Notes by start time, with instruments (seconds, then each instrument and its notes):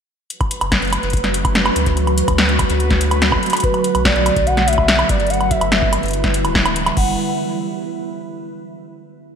0.30 ambient pad E3 F#3 A3 C#4 F#4, synth texture B4, closed hi-hat
0.41 kick, closed hi-hat, high woodblock
0.51 closed hi-hat
0.61 sub bass F#1, closed hi-hat, high woodblock
0.72 kick, snare, closed hi-hat
0.82 closed hi-hat
0.85 closed hi-hat
0.87 closed hi-hat
0.90 closed hi-hat
0.93 closed hi-hat, high woodblock
1.03 sub bass F#1, closed hi-hat
1.10 closed hi-hat
1.13 kick, closed hi-hat
1.17 closed hi-hat
1.24 snare, closed hi-hat
1.34 closed hi-hat
1.45 kick, closed hi-hat, high woodblock
1.55 snare, closed hi-hat
1.66 closed hi-hat, high woodblock
1.76 sub bass D2, closed hi-hat
1.86 kick, closed hi-hat
1.97 ambient pad D3 B3, closed hi-hat
2.07 closed hi-hat, high woodblock
2.18 closed hi-hat
2.28 sub bass D2, kick, closed hi-hat, high woodblock
2.38 snare, closed hi-hat
2.49 closed hi-hat
2.59 kick, closed hi-hat, high woodblock
2.70 sub bass D2, closed hi-hat
2.80 closed hi-hat
2.90 kick, snare, closed hi-hat
3.01 closed hi-hat
3.11 closed hi-hat, high woodblock
3.22 snare, closed hi-hat
3.32 kick, high woodblock
3.43 closed hi-hat
3.46 closed hi-hat
3.50 closed hi-hat
3.53 closed hi-hat, high woodblock
3.57 closed hi-hat
3.60 soft synth lead B4, kick, closed hi-hat
3.64 closed hi-hat
3.74 closed hi-hat, high woodblock
3.84 closed hi-hat
3.95 sub bass B1, closed hi-hat, high woodblock
4.05 soft synth lead D5, kick, snare, closed hi-hat
4.16 closed hi-hat
4.26 closed hi-hat, high woodblock
4.36 sub bass B1, kick, closed hi-hat
4.46 soft synth lead F#5, closed hi-hat
4.57 snare, closed hi-hat
4.67 soft synth lead E5, closed hi-hat
4.73 closed hi-hat
4.78 kick, high woodblock
4.88 snare, closed hi-hat
4.99 closed hi-hat, high woodblock
5.09 sub bass G1, soft synth lead D5, kick, closed hi-hat
5.20 closed hi-hat
5.27 ambient pad E3 G3 B3 E4, soft synth lead F#5, closed hi-hat
5.30 closed hi-hat
5.34 closed hi-hat
5.41 closed hi-hat, high woodblock
5.51 soft synth lead E5, kick, closed hi-hat
5.61 sub bass G1, closed hi-hat, high woodblock
5.72 snare, closed hi-hat
5.82 kick
5.93 closed hi-hat, high woodblock
6.03 sub bass G1, closed hi-hat
6.06 closed hi-hat
6.08 closed hi-hat
6.11 closed hi-hat
6.13 closed hi-hat
6.24 kick, snare, closed hi-hat
6.34 closed hi-hat
6.45 sub bass D1, closed hi-hat, high woodblock
6.55 kick, snare
6.66 closed hi-hat, high woodblock
6.76 closed hi-hat
6.86 closed hi-hat, high woodblock
6.97 sub bass F#1, ambient pad C#3 E3 F#3 A3 E4, soft synth lead F#5, kick, crash